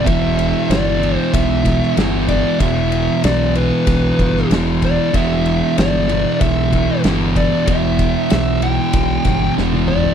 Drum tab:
RD |x-x-x-x-x-x-x-x-|x-x-x-x-x-x-x-x-|x-x-x-x-x-x-x-x-|x-x-x-x-x-x-----|
SD |----o-----ooo---|----o------oo---|----o-------o---|----o-------o---|
T1 |----------------|----------------|----------------|-------------o--|
T2 |----------------|----------------|----------------|--------------o-|
FT |----------------|----------------|----------------|---------------o|
BD |o-------o-o---o-|o-------o-o---o-|o-------o-o---o-|o-o-----o-o-----|